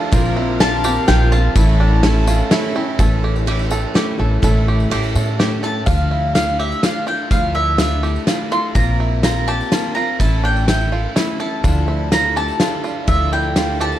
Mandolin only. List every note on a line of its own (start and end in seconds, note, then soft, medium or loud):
0.60 1.07 A5 loud
1.08 1.32 G5 loud
1.32 2.71 A5 medium
5.64 5.86 A5 medium
5.86 6.34 F5 medium
6.35 6.59 F5 medium
6.60 6.84 E5 medium
6.84 7.07 F5 medium
7.08 7.31 G5 medium
7.31 7.54 F5 medium
7.55 7.78 E5 medium
7.79 8.24 E5 medium
8.52 8.74 C6 medium
8.75 9.23 A#5 medium
9.24 9.47 A#5 medium
9.48 9.94 A5 medium
9.95 10.20 A#5 medium
10.20 10.44 A5 medium
10.45 10.67 G5 medium
10.68 11.13 G5 medium
11.40 12.12 A5 medium
12.13 12.36 A#5 loud
12.37 12.81 A5 medium
13.08 13.32 E5 medium
13.33 13.77 G5 medium
13.81 13.99 A5 loud